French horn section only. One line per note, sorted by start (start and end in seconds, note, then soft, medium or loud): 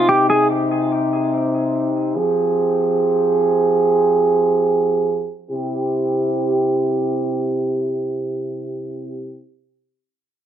0.00 2.14 C3 medium
0.00 2.13 C4 medium
0.00 2.14 D#4 medium
2.17 5.33 F3 medium
2.17 5.33 C4 medium
2.17 5.33 G4 medium
2.17 5.33 G#4 medium
5.50 9.44 C3 medium
5.50 9.44 C4 medium
5.50 9.44 E4 medium
5.50 9.44 G4 medium